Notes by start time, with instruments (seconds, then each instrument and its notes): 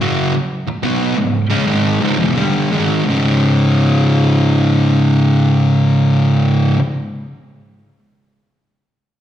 0.01 distorted electric guitar F#2 C#3 F#3
0.35 muted distorted electric guitar stroke
0.68 muted distorted electric guitar stroke
0.83 distorted electric guitar B2 F#3 B3
1.16 distorted electric guitar C#2 G#2
1.50 distorted electric guitar C#3 G#3
1.66 distorted electric guitar G#2 D#3 G#3
2.01 distorted electric guitar C#2 G#2
2.18 distorted electric guitar E2 B2
2.35 distorted electric guitar G2 D3 G3
2.71 distorted electric guitar G#2 D#3 G#3
3.05 distorted electric guitar C#2 G#2
3.09 distorted electric guitar C#3